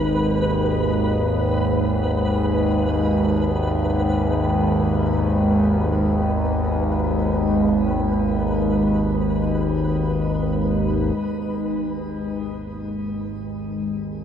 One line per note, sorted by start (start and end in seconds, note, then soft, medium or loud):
0.00 11.17 G#1 medium
0.00 11.17 D#2 medium
0.00 11.18 G#3 medium
0.00 11.18 D#4 medium
0.00 11.19 B4 medium
0.00 11.20 B4 medium
0.00 11.18 D#5 medium
11.18 14.24 G#1 medium
11.18 14.24 D#2 medium
11.18 14.24 G#3 medium
12.36 14.24 D#4 medium
13.96 14.24 D#5 medium
14.02 14.24 B4 medium